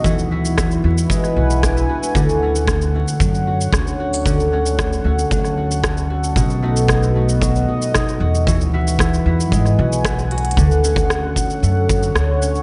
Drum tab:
HH |--------------------------------|--------------------------------|--------------------------------|--------------------------------|
SH |x-x---x-x-x---x-x-x---x-x-x---x-|x-x---x-x-x---x-x-x---x-x-x---x-|x-x---x-x-x---x-x-x---x-x-x---x-|x-x---x-x-x---x-x-x---x-x-x---x-|
SD |--------r---------r-----r-------|--------r---------------r-------|--------r---------r-----r-------|--------r---------------r-------|
BD |o-------o-------o-------o-------|o-------o-------o-------o-------|o-------o-------o-------o-------|o-------o-------o-------o-------|

HH |----------------------------xxxx|--------------------------------|
SH |x-x---x-x-x---x-x-x---x-x-x-----|x-x-x-x-x---x-x-x---x-x-x---x-x-|
SD |--------r---------r-----r-------|--------r---------------r-------|
BD |o-------o-------o-------o-------|o-----o-----o-------o-----------|